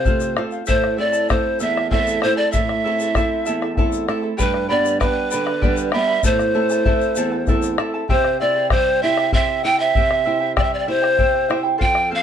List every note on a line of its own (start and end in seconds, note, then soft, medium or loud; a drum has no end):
0.00 0.36 C3 medium
0.00 0.42 C5 medium
0.05 0.36 A3 medium
0.05 0.37 C4 medium
0.05 0.37 F4 medium
0.05 0.35 A4 medium
0.05 0.37 C5 medium
0.05 0.37 F5 medium
0.05 bombo low medium
0.05 shaker soft
0.20 bombo rim soft
0.20 shaker medium
0.36 0.62 A3 soft
0.36 0.62 C4 soft
0.36 0.62 F4 medium
0.36 0.52 A4 medium
0.36 0.52 C5 medium
0.36 0.51 F5 medium
0.36 bombo rim medium
0.51 0.66 C5 soft
0.51 0.66 F5 medium
0.51 shaker soft
0.66 1.28 A2 medium
0.66 0.97 E4 medium
0.66 0.97 A4 medium
0.66 0.98 C5 medium
0.66 0.97 C5 medium
0.66 0.96 E5 medium
0.66 0.97 A5 medium
0.66 bombo low medium
0.66 shaker medium
0.84 bombo rim medium
0.97 1.29 A3 medium
0.97 1.29 C4 soft
0.97 1.12 E4 medium
0.97 1.30 E4 soft
0.97 1.12 A4 medium
0.97 1.32 D5 medium
0.97 1.13 E5 medium
0.97 1.11 A5 medium
1.12 1.28 E4 soft
1.12 1.28 A4 medium
1.12 1.29 A5 medium
1.12 shaker medium
1.29 1.79 A3 soft
1.29 1.80 C4 soft
1.29 1.59 E4 medium
1.29 1.80 E4 medium
1.29 1.60 A4 medium
1.29 1.61 C5 medium
1.29 1.59 E5 medium
1.29 1.60 A5 medium
1.29 bombo rim medium
1.29 bombo low medium
1.29 shaker soft
1.60 2.21 E2 medium
1.60 1.75 E4 medium
1.60 1.74 A4 medium
1.60 1.76 E5 medium
1.60 1.90 E5 medium
1.60 1.74 A5 medium
1.60 shaker medium
1.75 1.90 E4 soft
1.75 1.91 A4 soft
1.75 1.91 A5 medium
1.75 bombo rim medium
1.91 2.23 A3 medium
1.91 2.24 C4 medium
1.91 2.20 E4 medium
1.91 2.24 E4 medium
1.91 2.20 A4 medium
1.91 2.22 C5 medium
1.91 2.24 E5 medium
1.91 2.19 E5 medium
1.91 2.21 A5 medium
1.91 bombo low medium
2.07 bombo rim soft
2.07 shaker medium
2.21 2.73 A3 medium
2.21 2.37 E4 medium
2.21 2.36 A4 medium
2.21 2.36 C5 medium
2.21 2.37 E5 medium
2.21 2.36 A5 medium
2.21 bombo rim medium
2.25 2.73 C4 soft
2.25 2.74 E4 medium
2.37 2.51 E4 soft
2.37 2.52 A4 soft
2.37 2.51 D5 medium
2.37 2.52 A5 medium
2.52 2.84 E4 medium
2.52 2.84 A4 medium
2.52 3.72 E5 loud
2.52 2.83 E5 medium
2.52 2.84 A5 medium
2.52 bombo low medium
2.52 shaker medium
2.56 3.15 A2 medium
2.69 bombo rim medium
2.84 3.16 A3 medium
2.84 3.16 C4 soft
2.84 3.00 E4 medium
2.84 3.16 E4 medium
2.84 3.00 A4 medium
2.84 3.00 E5 medium
2.84 2.99 A5 medium
3.00 3.15 E4 soft
3.00 3.15 A4 medium
3.00 3.15 A5 medium
3.00 shaker medium
3.15 3.66 A3 soft
3.15 3.66 C4 soft
3.15 3.45 E4 medium
3.15 3.66 E4 medium
3.15 3.46 A4 medium
3.15 3.46 C5 medium
3.15 3.44 E5 medium
3.15 3.45 A5 medium
3.15 bombo rim medium
3.15 bombo low medium
3.15 shaker soft
3.45 4.07 E2 medium
3.45 3.62 E4 medium
3.45 3.61 A4 medium
3.45 3.61 E5 medium
3.45 3.61 A5 medium
3.45 shaker medium
3.62 3.76 E4 medium
3.62 3.77 A4 medium
3.62 3.77 A5 medium
3.62 bombo rim medium
3.77 4.07 A3 medium
3.77 4.07 C4 medium
3.77 4.07 E4 medium
3.77 4.08 A4 medium
3.77 4.07 E5 medium
3.77 4.08 A5 medium
3.77 bombo low medium
3.93 bombo rim soft
3.93 shaker medium
4.08 4.33 A3 medium
4.08 4.33 C4 medium
4.08 4.22 E4 medium
4.08 4.33 E4 medium
4.08 4.22 A4 medium
4.08 4.22 E5 medium
4.08 4.21 A5 medium
4.08 bombo rim medium
4.22 4.38 E4 soft
4.22 4.38 A4 soft
4.22 4.38 A5 medium
4.37 4.99 G2 medium
4.37 4.69 G4 medium
4.37 4.67 B4 medium
4.37 4.71 B4 medium
4.37 4.68 D5 medium
4.37 4.67 G5 medium
4.37 4.68 B5 medium
4.37 bombo low medium
4.37 shaker medium
4.54 bombo rim soft
4.68 5.00 G3 medium
4.68 5.01 B3 soft
4.68 5.01 D4 medium
4.68 4.84 B4 medium
4.68 4.83 D5 medium
4.68 4.99 D5 medium
4.68 4.85 G5 medium
4.68 4.83 B5 medium
4.84 4.99 B4 soft
4.84 5.00 D5 medium
4.84 5.00 B5 medium
4.84 shaker medium
5.00 5.51 G3 medium
5.00 5.51 B3 soft
5.00 5.51 D4 medium
5.00 5.95 B4 medium
5.00 5.30 B4 medium
5.00 5.30 D5 medium
5.00 5.29 G5 medium
5.00 5.31 B5 medium
5.00 bombo rim medium
5.00 bombo low medium
5.00 shaker soft
5.31 5.93 D3 medium
5.31 5.46 B4 medium
5.31 5.44 D5 medium
5.31 5.47 G5 medium
5.31 5.44 B5 medium
5.31 shaker loud
5.45 5.61 B4 soft
5.45 5.62 D5 soft
5.45 5.62 B5 medium
5.45 bombo rim medium
5.61 5.93 G3 medium
5.61 5.93 B3 medium
5.61 5.94 D4 medium
5.61 5.93 G4 medium
5.61 5.91 B4 medium
5.61 5.92 D5 medium
5.61 5.91 G5 medium
5.61 5.92 B5 medium
5.61 bombo low medium
5.77 bombo rim soft
5.77 shaker medium
5.92 6.19 G3 medium
5.92 6.19 B3 soft
5.92 6.19 D4 medium
5.92 6.08 B4 medium
5.92 6.07 D5 medium
5.92 6.27 E5 loud
5.92 6.08 G5 medium
5.92 6.06 B5 medium
5.92 bombo rim medium
6.08 6.23 B4 soft
6.08 6.23 D5 soft
6.08 6.23 B5 medium
6.23 6.84 A2 medium
6.23 6.54 E4 medium
6.23 6.53 A4 medium
6.23 7.79 C5 loud
6.23 6.53 E5 medium
6.23 6.54 A5 medium
6.23 bombo low medium
6.23 shaker loud
6.39 bombo rim medium
6.39 shaker soft
6.54 6.84 A3 soft
6.54 6.85 C4 soft
6.54 6.70 E4 medium
6.54 6.85 E4 medium
6.54 6.70 A4 medium
6.54 6.70 E5 medium
6.54 6.69 A5 medium
6.70 6.85 E4 soft
6.70 6.84 A4 medium
6.70 6.85 A5 medium
6.70 bombo rim soft
6.70 shaker medium
6.85 7.35 A3 soft
6.85 7.35 C4 soft
6.85 7.15 E4 medium
6.85 7.35 E4 medium
6.85 7.16 A4 medium
6.85 7.17 C5 medium
6.85 7.15 E5 medium
6.85 7.17 A5 medium
6.85 bombo low medium
7.01 shaker soft
7.16 7.77 E2 medium
7.16 7.32 E4 medium
7.16 7.31 A4 medium
7.16 7.31 E5 medium
7.16 7.31 A5 medium
7.16 shaker loud
7.32 7.48 E4 soft
7.32 7.47 A4 soft
7.32 7.47 A5 medium
7.47 7.77 A3 medium
7.47 7.78 C4 medium
7.47 7.78 E4 medium
7.47 7.78 A4 medium
7.47 7.77 E5 medium
7.47 7.78 A5 medium
7.47 bombo rim soft
7.47 bombo low medium
7.47 shaker soft
7.62 bombo rim soft
7.62 shaker medium
7.78 8.03 A3 medium
7.78 8.03 C4 soft
7.78 8.04 E4 medium
7.78 7.94 E4 medium
7.78 7.93 A4 medium
7.78 7.93 E5 medium
7.78 7.93 A5 medium
7.78 bombo rim medium
7.94 8.08 E4 soft
7.94 8.09 A4 medium
7.94 8.09 A5 medium
8.09 9.91 C3 medium
8.09 8.40 E4 medium
8.09 8.40 G4 medium
8.09 8.40 C5 medium
8.09 8.39 C5 medium
8.09 8.38 E5 medium
8.09 8.40 G5 medium
8.09 bombo low medium
8.24 bombo rim medium
8.40 8.56 E4 medium
8.40 8.71 E4 medium
8.40 8.55 C5 medium
8.40 8.69 D5 medium
8.40 8.55 E5 medium
8.40 8.54 G5 medium
8.55 8.70 E4 medium
8.55 8.71 C5 medium
8.55 8.71 G5 medium
8.70 9.02 G3 medium
8.70 9.01 E4 medium
8.70 9.04 C5 loud
8.70 9.01 C5 medium
8.70 9.01 E5 medium
8.70 9.02 G5 medium
8.70 bombo rim medium
8.70 bombo low medium
9.02 9.17 E4 medium
9.02 9.33 E4 medium
9.02 9.17 C5 medium
9.02 9.17 E5 medium
9.02 9.33 E5 loud
9.02 9.17 G5 medium
9.17 9.31 E4 soft
9.17 9.32 C5 soft
9.17 9.32 G5 medium
9.17 bombo rim medium
9.32 9.63 C4 medium
9.32 9.62 E4 medium
9.32 9.63 G4 medium
9.32 9.63 C5 medium
9.32 9.62 E5 medium
9.32 9.64 G5 medium
9.32 bombo low medium
9.49 bombo rim soft
9.63 9.79 E4 medium
9.63 9.94 E4 medium
9.63 9.79 C5 medium
9.63 9.79 E5 medium
9.63 9.78 G5 loud
9.63 9.78 G5 medium
9.79 9.94 E4 soft
9.79 9.95 C5 medium
9.79 10.52 E5 loud
9.79 9.94 G5 medium
9.95 11.77 C3 medium
9.95 10.24 E4 medium
9.95 10.25 C5 medium
9.95 10.24 E5 medium
9.95 10.25 G5 medium
9.95 bombo low medium
10.11 bombo rim medium
10.25 10.40 E4 medium
10.25 10.56 E4 medium
10.25 10.40 C5 medium
10.25 10.41 E5 medium
10.25 10.39 G5 medium
10.40 10.55 E4 soft
10.40 10.56 C5 soft
10.40 10.56 G5 medium
10.56 10.86 G3 medium
10.56 10.86 E4 medium
10.56 10.87 G4 medium
10.56 10.87 C5 medium
10.56 10.65 D5 medium
10.56 10.86 E5 medium
10.56 10.87 G5 medium
10.56 bombo rim medium
10.56 bombo low medium
10.64 10.75 E5 medium
10.74 10.78 D5 medium
10.79 10.90 D5 medium
10.87 11.02 E4 medium
10.87 11.17 E4 medium
10.87 11.01 C5 medium
10.87 11.57 C5 loud
10.87 11.02 E5 medium
10.87 11.01 G5 medium
11.02 11.17 E4 soft
11.02 11.17 C5 soft
11.02 11.18 G5 medium
11.02 bombo rim medium
11.17 11.49 C4 medium
11.17 11.48 E4 medium
11.17 11.49 C5 medium
11.17 11.47 E5 medium
11.17 11.49 G5 medium
11.17 bombo low medium
11.35 bombo rim soft
11.48 11.63 E4 medium
11.48 11.79 E4 medium
11.48 11.63 C5 medium
11.48 11.64 E5 medium
11.48 11.62 G5 medium
11.48 bombo rim medium
11.63 11.80 E4 soft
11.63 11.77 C5 medium
11.63 11.78 G5 medium
11.78 12.23 F2 medium
11.78 12.09 A4 medium
11.78 12.10 C5 medium
11.78 12.10 F5 medium
11.78 12.09 G5 loud
11.78 bombo low medium
11.95 bombo rim medium
12.10 12.23 C4 medium
12.10 12.23 A4 medium
12.10 12.23 C5 medium
12.10 12.23 F5 medium
12.15 12.23 F5 loud